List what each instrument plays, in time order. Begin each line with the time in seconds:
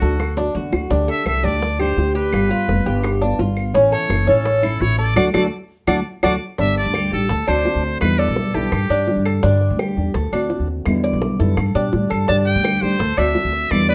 Already playing: muted trumpet F#4
0.01 upright bass D2, nylon-string guitar A3 D4 F#4, cuban tres A4, high bongo
0.19 muted nylon-string guitar stroke, high bongo, claves
0.37 nylon-string guitar A3 D4 F#4, cuban tres D4, high bongo
0.54 upright bass E2, nylon-string guitar D3 A3 D4 F#4, cuban tres F#4
0.72 upright bass D2, low bongo, claves
0.90 upright bass D2, nylon-string guitar D3 A3 D4 G4, cuban tres D4, high bongo
1.08 cuban tres A4, muted trumpet E5, high bongo
1.25 upright bass C2, nylon-string guitar D3 A3 D4 G4, muted trumpet E5, high bongo, claves
1.43 upright bass D2, nylon-string guitar A3 D4 G4, cuban tres D4, muted trumpet D5, high bongo
1.61 muted nylon-string guitar stroke, high bongo
1.79 nylon-string guitar A3 D4 G4, cuban tres G4, muted trumpet C5, claves
1.97 upright bass D2, nylon-string guitar D3 A3 D4 G4, high bongo, low bongo
2.15 cuban tres G4, muted trumpet B4, high bongo
2.33 upright bass G1, nylon-string guitar G3 B3 F4, high bongo, claves
2.51 cuban tres F4, high bongo
2.68 upright bass F1, nylon-string guitar G3 B3 F4, high bongo
2.86 upright bass G1, nylon-string guitar B3 F4, cuban tres G4, high bongo
3.04 muted nylon-string guitar stroke, high bongo, claves
3.21 nylon-string guitar B3 F4, cuban tres D4
3.39 upright bass G1, nylon-string guitar G3 B3 F4, cuban tres F4, high bongo, low bongo
3.57 high bongo, claves
3.74 upright bass A1, nylon-string guitar E3 A3 C#4 E4, cuban tres C#4, high bongo
3.92 cuban tres A4, muted trumpet C#5, high bongo
4.10 upright bass F#1, nylon-string guitar E3 A3 C#4 E4, high bongo, claves
4.27 upright bass A1, nylon-string guitar A3 C#4 E4, cuban tres C#4, muted trumpet A4, high bongo
4.45 muted nylon-string guitar stroke, high bongo
4.62 nylon-string guitar A3 C#4 E4, cuban tres E4, claves
4.80 upright bass A1, nylon-string guitar E3 A3 C#4 E4, muted trumpet C#5, high bongo, low bongo
4.98 cuban tres A4, muted trumpet D5, high bongo
5.16 upright bass D2, nylon-string guitar F#3 A3 D4, cuban tres D4 F#4 A4, muted trumpet D5, low bongo, claves
5.34 upright bass D2, nylon-string guitar F#3 A3 D4, cuban tres D4 F#4 A4, muted trumpet D5, low bongo, claves
5.87 upright bass D2, nylon-string guitar F#3 A3 D4, cuban tres D4 F#4 A4, muted trumpet D5, low bongo, claves
6.23 upright bass D2, nylon-string guitar F#3 A3 D4, cuban tres D4 F#4 A4, muted trumpet D5, low bongo, claves
6.58 upright bass G1, nylon-string guitar D3 G3 D4 G4, cuban tres D4, muted trumpet E5, high bongo
6.76 muted trumpet D5, high bongo
6.86 upright bass D2
6.94 nylon-string guitar D3 G3 D4 G4, cuban tres G4, high bongo, claves
7.12 upright bass A1, nylon-string guitar G3 D4 G4, muted trumpet A4, high bongo
7.29 upright bass D2, cuban tres A4, muted nylon-string guitar stroke, high bongo
7.47 upright bass D2, nylon-string guitar A3 C4 F#4, cuban tres D4, muted trumpet C5, claves
7.65 nylon-string guitar D3 A3 C4 F#4, high bongo, low bongo
7.75 upright bass D2
7.83 high bongo
8.00 upright bass E2, nylon-string guitar B2 D3 G3 B3 E4, muted trumpet B4, high bongo, claves
8.19 muted trumpet A4, cuban tres D5, high bongo
8.28 upright bass B1
8.36 nylon-string guitar D3 G3 B3 E4, high bongo
8.54 upright bass B1, nylon-string guitar D3 G3 B3 E4, muted trumpet G4, cuban tres A4, high bongo
8.72 upright bass G2, muted nylon-string guitar stroke, high bongo, claves
8.90 upright bass G2, nylon-string guitar G3 D4 G4, cuban tres D4
9.07 nylon-string guitar D3 G3 D4 G4, high bongo, low bongo
9.16 upright bass G2
9.25 cuban tres A4, high bongo, claves
9.43 upright bass G2, nylon-string guitar D3 G3 D4 G4, cuban tres D4, high bongo
9.61 high bongo
9.70 upright bass D2
9.79 nylon-string guitar D3 G3 D4 G4, cuban tres G4, high bongo, claves
9.96 upright bass E2, nylon-string guitar G3 D4 G4, high bongo
10.14 upright bass D2, cuban tres A4, muted nylon-string guitar stroke, high bongo
10.32 upright bass D2, nylon-string guitar A3 C4 F#4, cuban tres D4, claves
10.50 nylon-string guitar D3 A3 C4 F#4, high bongo, low bongo
10.60 upright bass D#2
10.68 high bongo
10.86 upright bass E2, nylon-string guitar B2 D3 G3 B3 E4, high bongo, claves
11.04 cuban tres D5, high bongo
11.13 upright bass B1
11.21 nylon-string guitar D3 G3 B3 E4, high bongo
11.39 upright bass F#2, nylon-string guitar D3 G3 B3 E4, cuban tres A4, high bongo
11.57 upright bass G2, muted nylon-string guitar stroke, high bongo, claves
11.75 upright bass B2, nylon-string guitar G3 D4 G4, cuban tres D4
11.93 upright bass A2, nylon-string guitar D3 G3 D4 G4, high bongo, low bongo
12.10 upright bass G2, cuban tres A4, high bongo, claves
12.28 upright bass G2, nylon-string guitar D3 G3 D4 G4, cuban tres D4, muted trumpet A5, high bongo
12.46 muted trumpet G5, high bongo
12.55 upright bass D2
12.64 nylon-string guitar D3 G3 D4 G4, cuban tres G4, high bongo, claves
12.82 upright bass D2, nylon-string guitar G3 D4 G4, muted trumpet C5, high bongo
12.99 upright bass D2, cuban tres A4, muted nylon-string guitar stroke, high bongo
13.17 upright bass D2, nylon-string guitar A3 C4 F#4, cuban tres D4, muted trumpet E5, claves
13.35 nylon-string guitar D3 A3 C4 F#4, high bongo, low bongo
13.44 upright bass D2
13.53 high bongo
13.71 upright bass E2, nylon-string guitar B2 D3 G3 B3 E4, muted trumpet D5, high bongo, claves
13.89 muted trumpet B4, cuban tres D5, high bongo